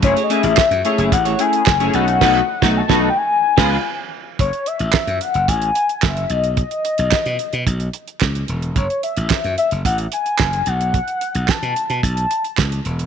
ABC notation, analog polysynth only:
X:1
M:4/4
L:1/16
Q:1/4=110
K:F#dor
V:1 name="Analog polysynth"
[A,CEG] z [A,CEG]2 z2 [A,CEG]2 z2 [A,CEG]2 z [A,CEG] [A,CDF]2 | [A,DF]2 z [A,DF]2 [A,DF]2 z3 [G,B,^E]2 z4 | z16 | z16 |
z16 | z16 |]